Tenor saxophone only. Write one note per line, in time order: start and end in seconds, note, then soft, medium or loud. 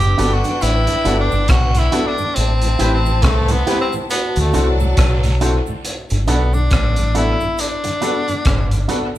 0.00 0.35 G4 loud
0.34 0.63 F#4 loud
0.62 1.19 E4 loud
1.20 1.51 D4 medium
1.50 1.80 F#4 loud
1.79 2.09 E4 loud
2.07 2.37 D4 medium
2.35 2.93 C4 loud
2.94 3.25 C4 medium
3.23 3.53 A3 medium
3.52 3.81 B3 loud
3.81 3.94 C4 medium
4.10 4.37 B3 loud
4.40 4.70 A3 medium
4.69 5.56 F#3 medium
6.28 6.56 B3 medium
6.54 7.15 D4 loud
7.17 7.62 E4 loud
7.61 8.90 D4 loud